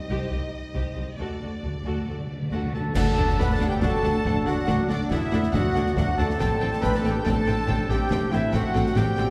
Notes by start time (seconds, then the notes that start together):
Already playing: G3 D#4 D#5
0.09 C2 G4 C5
0.32 C2 G4 C5
0.75 C2 G4 C5
0.95 C2 G4 C5
1.18 D2 D3 D4 F#4 A4 D5
1.27 D3
1.34 D3
1.40 D2 D3 F#4 A4
1.50 D3
1.58 D3
1.63 D2 D3 F#4 A4
1.74 D3
1.82 D2 D3 F#4 A4
1.90 D3
1.96 D3
2.04 D2 D3 F#4
2.08 D3 F#3 A4
2.19 D3
2.27 D3
2.35 D3
2.42 D3
2.50 D2 D3 F#4 A4 F#5
2.57 D3
2.65 D3
2.73 D2 D3 F#4 A4 A5
2.80 D3
2.88 D3
2.95 D2 F#3 D4 A4 F#5 A5, concert bass drum, snare, crash
3.16 D2 D4 A4 F#5
3.28 snare
3.38 D2 D4 A4 B4 F#5 B5, concert bass drum, snare
3.50 A4 A5, snare
3.59 D2 D4 A4 F#5, snare
3.66 G4 G5
3.80 D2 F#3 D4 F#4 A4 F#5 A5, concert bass drum, snare
4.03 D2 D4 A4 F#5, snare
4.24 D2 D4 A4 F#5, concert bass drum
4.45 D2 D4 F#4 A4 F#5, snare
4.67 D2 D4 A4 F#5, concert bass drum, snare
4.89 D2 D4 A4 D5 F#5, snare
5.10 D2 B3 D4 E4 A4 E5 F#5, concert bass drum, snare
5.31 D2 D4 A4 F#5, snare
5.43 snare
5.52 D2 F#3 D4 F#4 A4 F#5, concert bass drum, snare
5.74 D2 D4 A4 F#5, snare
5.86 snare
5.94 D2 F#3 A3 D4 F#4 A4 F#5, concert bass drum, snare
5.99 F#4
6.17 D2 D4 A4 F#5 A5, snare
6.30 snare
6.39 A1 A2 G3 C4 A4 G5 A5, concert bass drum, snare, crash
6.61 A1 A2 C4 A4 G5
6.73 snare
6.81 A1 A2 C4 D4 A4 B4 G5 B5, concert bass drum, snare
6.94 A4 A5, snare
7.04 A1 A2 C4 A4 G5, snare
7.10 G4 G5
7.23 A1 A2 G3 C4 A4 G5 A5, concert bass drum, snare
7.46 A1 A2 C4 A4 G5, snare
7.68 A1 A2 C4 A4 G5, concert bass drum
7.88 A1 A2 C4 G4 A4 G5, snare
8.10 A1 A2 C4 A4 G5, concert bass drum, snare
8.31 A1 A2 C4 E4 A4 E5 G5, snare
8.53 A1 A2 C4 F#4 A4 F#5 G5, concert bass drum, snare
8.74 A1 A2 C4 A4 G5, snare
8.86 snare
8.95 A1 A2 G3 C4 G4 A4 G5, concert bass drum, snare
9.17 A1 A2 C4 A4 G5, snare